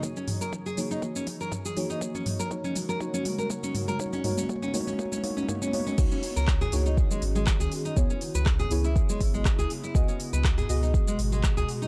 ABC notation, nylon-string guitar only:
X:1
M:4/4
L:1/16
Q:"Swing 16ths" 1/4=121
K:C#dor
V:1 name="Nylon-string guitar"
z C z A z G z D z C z A z G z D | z C z A z C z A z C z A z C z A | z C z C z C z C z C z C z C z C | z C z A z G z D z G, z G, z G z D |
z C z B z G z E z G, z G, z G z E | z C z B z G z D z G, z G, z G z D |]